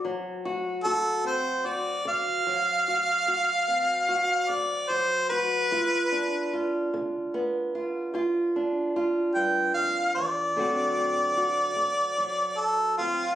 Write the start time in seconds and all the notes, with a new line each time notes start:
Already playing: D3 C4 F#4
0.05 F#3
0.45 F#4
0.84 D2 F#4 A4
1.25 C4 C5
1.65 F#4 D5
2.05 D3 F5
2.47 F#3
2.88 F#4
3.27 D2 F#4
3.68 C4
4.09 F#4
4.49 D3 D5
4.89 F#3 C5
5.30 F#4 B4
5.71 G2 F4
6.12 D4
6.53 F4
6.94 D3
7.34 B3
7.75 F4
8.14 G2 F4
8.56 D4
8.96 F4
9.35 G2 G5
9.74 F2 F5
10.15 E2 D5
10.56 D2 D3 F#3 C4 F#4
10.97 C4
11.37 F#4
11.76 D3
12.18 F#3
12.58 A4
12.98 D2 C4 F4